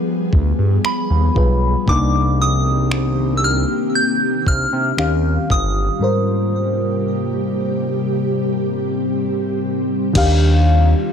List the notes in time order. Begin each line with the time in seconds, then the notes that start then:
Already playing: F3 G3 B3 F4 G#4 B4
0.33 D2, kick
0.59 G2
0.85 B5, finger snap
1.10 D#2
1.35 B1 G3 F4 G#4 B4, kick
1.86 C2 C3 D#3 A#3 C4 D#4 G4 D6, kick
1.90 D4
2.42 D#6
2.91 finger snap
3.37 E6
3.44 F6
3.95 G6
4.47 C2 F6, kick
4.73 C3
4.97 D#2 D#3 G3 C#4 F4 G4 F5, finger snap
5.50 G1 D#6, kick
5.99 G#2 C3 G3 A#3 G4 A#4
6.04 C5
8.10 C4
10.13 D#2 D#3 G3 D4 F4 G4, kick, closed hi-hat, crash
10.18 F5